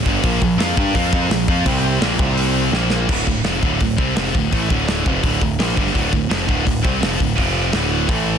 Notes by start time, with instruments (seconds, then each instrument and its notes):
0.04 picked electric bass G1, distorted electric guitar G2 D3 G3, kick, snare
0.08 distorted electric guitar G3
0.23 picked electric bass A#1, distorted electric guitar A#2 F3 A#3, analog synth pad A#3 F4 F5 A#5, kick, open hi-hat
0.42 picked electric bass A#1, distorted electric guitar A#2 F3, kick
0.57 picked electric bass F2, distorted electric guitar F3 C4 F4, snare, open hi-hat
0.76 picked electric bass G2, distorted electric guitar G3 D4 G4, kick
0.94 picked electric bass F2, distorted electric guitar F3 C4 F4, kick, open hi-hat
1.13 picked electric bass F2, distorted electric guitar F3 C4 F4, kick
1.29 picked electric bass A#1, distorted electric guitar A#2 F3, snare, open hi-hat
1.48 picked electric bass F2, distorted electric guitar F3 C4 F4, kick
1.65 picked electric bass C2, distorted electric guitar C3 G3 C4, analog synth pad C4 G4 G5 C6, kick, open hi-hat
2.01 picked electric bass A#1, distorted electric guitar A#2 F3 A#3, analog synth pad A#3 F4 F5 A#5, snare, open hi-hat
2.18 picked electric bass C2, distorted electric guitar C3 G3 C4, analog synth pad C4 G4 G5 C6, kick
2.37 open hi-hat
2.72 picked electric bass A#1, distorted electric guitar A#2 F3 A#3, analog synth pad A#3 F4 F5 A#5, snare
2.90 snare
3.09 picked electric bass D1, distorted electric guitar D2 A2 D3, kick, crash
3.27 picked electric bass D1, distorted electric guitar D2 A2, kick
3.44 picked electric bass F1, distorted electric guitar F2 C3 F3, snare, open hi-hat
3.63 picked electric bass D1, distorted electric guitar D2 A2 D3, kick
3.80 picked electric bass D1, distorted electric guitar D2 A2, kick, open hi-hat
3.97 picked electric bass C2, distorted electric guitar C3 G3 C4, kick
4.15 picked electric bass F1, distorted electric guitar F2 C3 F3, snare, open hi-hat
4.26 snare
4.34 picked electric bass D1, distorted electric guitar D2 A2, kick
4.51 picked electric bass A1, distorted electric guitar A2 E3 A3, kick, open hi-hat
4.70 picked electric bass D1, distorted electric guitar D2 A2 D3, kick
4.88 snare, open hi-hat
5.06 picked electric bass F1, distorted electric guitar F2 C3 F3, kick
5.23 picked electric bass D1, distorted electric guitar D2 A2 D3, kick, open hi-hat
5.40 picked electric bass D1, distorted electric guitar D2 A2, kick
5.59 picked electric bass A#1, distorted electric guitar A#2 F3 A#3, snare, open hi-hat
5.69 snare
5.77 picked electric bass G1, distorted electric guitar G2 D3 G3, kick
5.87 snare
5.94 picked electric bass D1, distorted electric guitar D2 A2 D3, kick, open hi-hat
6.12 picked electric bass D1, distorted electric guitar D2 A2, kick
6.29 picked electric bass F1, distorted electric guitar F2 C3 F3, snare, open hi-hat
6.48 picked electric bass D1, distorted electric guitar D2 A2 D3, kick
6.66 picked electric bass D1, distorted electric guitar D2 A2, kick, open hi-hat
6.83 picked electric bass C2, distorted electric guitar C3 G3 C4, kick
7.00 picked electric bass F1, distorted electric guitar F2 C3 F3, snare, open hi-hat
7.12 snare
7.19 picked electric bass D1, distorted electric guitar D2 A2, kick
7.36 picked electric bass F1, distorted electric guitar F2 C3 F3, kick, open hi-hat
7.73 picked electric bass D1, distorted electric guitar D2 A2 D3, snare, open hi-hat
8.08 picked electric bass A1, distorted electric guitar A2 E3 A3, kick, open hi-hat